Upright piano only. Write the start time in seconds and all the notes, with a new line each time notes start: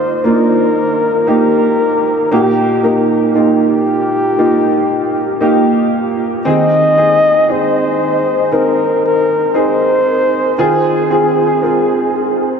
Already playing: D#3 A#3 D#4 F4
0.24 A#3 D4 F4
0.31 D#4
1.27 A#3 D#4 G4
2.31 A#2 A#3 D#4 G4
2.83 A#3 D#4 A#4
3.34 A#3 D#4 F4
4.38 A#3 D#4 F4
5.41 A#3 D#4 G4
6.45 D#3 C4 D#4 G#4
6.97 C4 D#4 G#4
7.48 C4 D#4 G#4
8.52 C4 D#4 A#4
9.54 C4 D#4 G#4
10.58 D#3 C4 F4 G#4
11.10 C4 F4 G#4
11.62 C4 F4 A#4